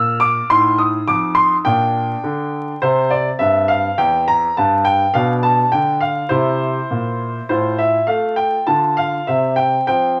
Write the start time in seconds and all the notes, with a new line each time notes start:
Already playing: A#2 D4 E6
0.20 D6
0.50 A2 D#4 C6
0.78 D#6
1.08 F2 D6
1.35 C6
1.65 A#2 D4 G5
2.24 D3
2.82 C3 C4 C5
3.10 D5
3.39 G2 E5
3.68 F5
3.98 E2 G5
4.28 A#5
4.57 G2 A5
4.85 G5
5.14 B2 D4 F5
5.43 A5
5.72 D3 G5
6.00 F5
6.29 C3 E4 C5
6.91 A#2
7.49 A2 F4 C5
7.78 E5
8.07 A3 F5
8.36 G5
8.67 D3 F4 A5
8.97 F5
9.27 C3 C4 E5
9.56 G5
9.87 F3 C4 C5 G5